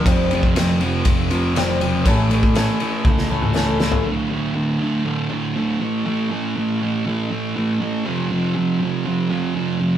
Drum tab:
RD |x-x-x-x-x-x-x-x-|x-x-x-x---------|----------------|----------------|
SD |----o-------o---|----o----o--o-o-|----------------|----------------|
T1 |----------------|--------o-------|----------------|----------------|
T2 |----------------|-----------o----|----------------|----------------|
FT |----------------|---------------o|----------------|----------------|
BD |o--o----o-------|o--o----o-------|----------------|----------------|

RD |----------------|
SD |----------------|
T1 |----------------|
T2 |----------------|
FT |----------------|
BD |----------------|